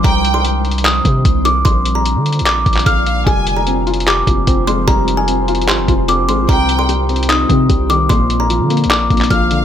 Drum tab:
HH |x-----x-----x-----x-x-x-x-----x-----x-----x-----|x-----x-----x-----x-x-x-x-----x-x-x-x-----x-----|x-----x-----x-----x-x-x-x-----x-----x-----x-----|x-----x-----x-----x-x-x-x-----x-----x-----x-----|
CP |------------------------x-----------------------|------------------------x--------x--------------|------------------------x-----------------------|------------------------x-----------------------|
BD |o-----------------------------o-----o-----------|o-----------------------------o-----o-----------|o-----------------------------o-----o-----------|o-----------------------------o-----------------|

HH |x-----x-----x-----x-x-x-x-----x-----x-----x-----|x-----x-----x-----x-x-x-x-----x-x-x-x-----x-----|
CP |------------------------x-----------------------|------------------------x--------x--------------|
BD |o-----------------------------o-----o-----------|o-----------------------------o-----o-----------|